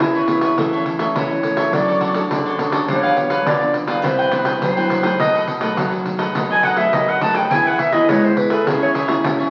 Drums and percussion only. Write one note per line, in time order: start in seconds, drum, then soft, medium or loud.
0.00 pandeiro medium
0.15 pandeiro soft
0.28 pandeiro medium
0.41 pandeiro medium
0.58 pandeiro medium
0.73 pandeiro soft
0.86 pandeiro medium
0.99 pandeiro medium
1.16 pandeiro medium
1.31 pandeiro soft
1.43 pandeiro medium
1.57 pandeiro medium
1.73 pandeiro medium
1.88 pandeiro soft
2.01 pandeiro medium
2.14 pandeiro medium
2.31 pandeiro medium
2.46 pandeiro soft
2.59 pandeiro medium
2.72 pandeiro medium
2.88 pandeiro medium
3.04 pandeiro soft
3.17 pandeiro medium
3.30 pandeiro medium
3.46 pandeiro medium
3.61 pandeiro soft
3.74 pandeiro medium
3.88 pandeiro medium
4.04 pandeiro medium
4.19 pandeiro soft
4.32 pandeiro medium
4.45 pandeiro medium
4.62 pandeiro medium
4.77 pandeiro soft
4.90 pandeiro medium
5.03 pandeiro medium
5.20 pandeiro medium
5.35 pandeiro soft
5.47 pandeiro medium
5.61 pandeiro medium
5.77 pandeiro medium
5.92 pandeiro soft
6.06 pandeiro medium
6.19 pandeiro medium
6.35 pandeiro medium
6.50 pandeiro soft
6.63 pandeiro medium
6.77 pandeiro medium
6.93 pandeiro medium
7.08 pandeiro soft
7.21 pandeiro medium
7.35 pandeiro medium
7.51 pandeiro medium
7.66 pandeiro soft
7.79 pandeiro medium
7.93 pandeiro medium
8.09 pandeiro medium
8.24 pandeiro soft
8.37 pandeiro medium
8.50 pandeiro medium
8.67 pandeiro medium
8.82 pandeiro soft
8.95 pandeiro medium
9.08 pandeiro medium
9.24 pandeiro medium
9.40 pandeiro soft